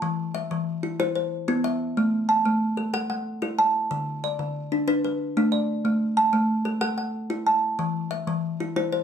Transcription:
0.00 0.35 E3 medium
0.00 0.19 A5 medium
0.35 0.83 E5 medium
0.51 0.84 E3 medium
0.83 0.98 E4 medium
1.00 1.32 E4 medium
1.00 1.14 C5 medium
1.16 1.64 C5 medium
1.48 1.81 B3 medium
1.48 1.97 E4 medium
1.64 2.13 E5 medium
1.97 2.29 A3 medium
2.29 2.78 A5 medium
2.45 2.78 A3 medium
2.77 2.92 A4 medium
2.94 3.26 A4 medium
2.94 3.09 F#5 medium
3.10 3.58 F#5 medium
3.42 3.75 E4 medium
3.42 3.91 A4 medium
3.58 4.07 A5 medium
3.91 4.23 D3 medium
4.24 4.72 D5 medium
4.39 4.72 D3 medium
4.72 4.86 D4 medium
4.88 5.20 D4 medium
4.88 5.03 B4 medium
5.04 5.53 B4 medium
5.37 5.69 A3 medium
5.37 5.85 D4 medium
5.52 6.01 D5 medium
5.85 6.17 A3 medium
6.17 6.66 A5 medium
6.33 6.66 A3 medium
6.65 6.80 A4 medium
6.81 7.14 A4 medium
6.81 6.97 F#5 medium
6.98 7.47 F#5 medium
7.30 7.63 E4 medium
7.47 7.95 A5 medium
7.79 8.11 E3 medium
8.11 8.60 E5 medium
8.27 8.60 E3 medium
8.60 8.75 E4 medium
8.76 9.04 E4 medium
8.76 8.91 C5 medium
8.92 9.04 C5 medium

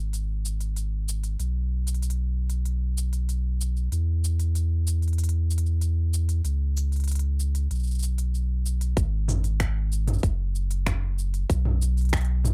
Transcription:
0.00 1.36 G#1 medium
0.13 open hi-hat soft
0.13 cabasa soft
0.45 cabasa medium
0.61 open hi-hat soft
0.61 cabasa soft
0.76 open hi-hat soft
0.76 cabasa soft
1.08 cabasa medium
1.24 open hi-hat soft
1.24 cabasa soft
1.39 3.89 B1 medium
1.39 open hi-hat soft
1.39 cabasa soft
1.87 open hi-hat soft
1.87 cabasa medium
1.94 open hi-hat soft
2.02 open hi-hat soft
2.02 cabasa soft
2.10 open hi-hat soft
2.50 open hi-hat soft
2.50 cabasa soft
2.65 open hi-hat soft
2.97 cabasa medium
3.13 open hi-hat soft
3.13 cabasa soft
3.29 open hi-hat soft
3.29 cabasa soft
3.61 cabasa medium
3.77 cabasa soft
3.92 6.41 E2 medium
3.92 open hi-hat soft
3.92 cabasa soft
4.24 cabasa medium
4.39 open hi-hat soft
4.39 cabasa soft
4.55 open hi-hat soft
4.55 cabasa soft
4.87 cabasa medium
5.02 open hi-hat soft
5.02 cabasa soft
5.08 open hi-hat soft
5.13 open hi-hat soft
5.18 open hi-hat soft
5.18 cabasa soft
5.24 open hi-hat soft
5.29 open hi-hat soft
5.50 cabasa medium
5.58 open hi-hat soft
5.66 cabasa soft
5.81 open hi-hat soft
5.81 cabasa soft
6.13 cabasa medium
6.29 open hi-hat soft
6.29 cabasa soft
6.44 7.67 C#2 medium
6.44 open hi-hat soft
6.44 cabasa soft
6.77 cabasa medium
6.92 open hi-hat soft
6.92 cabasa soft
6.96 open hi-hat soft
7.00 open hi-hat soft
7.04 open hi-hat soft
7.08 open hi-hat soft
7.08 cabasa soft
7.11 open hi-hat soft
7.15 open hi-hat soft
7.19 open hi-hat soft
7.40 cabasa medium
7.55 open hi-hat medium
7.55 cabasa soft
7.71 8.94 B1 medium
7.71 open hi-hat soft
7.71 cabasa soft
7.75 cabasa soft
7.79 cabasa soft
7.83 cabasa soft
7.87 cabasa soft
7.91 cabasa soft
7.95 cabasa soft
7.99 cabasa soft
8.03 cabasa medium
8.18 open hi-hat soft
8.18 cabasa soft
8.34 cabasa soft
8.66 cabasa medium
8.81 open hi-hat soft
8.81 cabasa soft
8.97 10.19 G#1 loud
8.97 kick medium
8.97 open hi-hat soft
8.97 cabasa soft
9.28 mid tom medium
9.28 cabasa medium
9.44 open hi-hat medium
9.44 cabasa soft
9.60 finger snap loud
9.60 kick medium
9.60 open hi-hat soft
9.60 cabasa soft
9.92 cabasa medium
10.08 mid tom medium
10.08 open hi-hat medium
10.08 cabasa soft
10.13 cabasa soft
10.18 cabasa soft
10.23 11.45 F#1 loud
10.23 kick loud
10.23 open hi-hat soft
10.23 cabasa soft
10.55 cabasa medium
10.71 open hi-hat medium
10.71 cabasa soft
10.86 finger snap loud
10.86 kick loud
10.86 mid tom medium
10.86 open hi-hat soft
10.86 cabasa soft
11.19 cabasa medium
11.34 open hi-hat medium
11.34 cabasa soft
11.50 12.54 B1 loud
11.50 kick loud
11.50 open hi-hat soft
11.50 cabasa soft
11.65 mid tom medium
11.82 cabasa medium
11.97 open hi-hat soft
11.97 cabasa soft
12.01 open hi-hat soft
12.05 open hi-hat soft
12.09 finger snap loud
12.09 kick loud
12.09 open hi-hat soft
12.13 open hi-hat soft
12.13 cabasa soft
12.17 open hi-hat soft
12.21 open hi-hat soft
12.25 open hi-hat soft
12.45 mid tom medium
12.45 cabasa medium

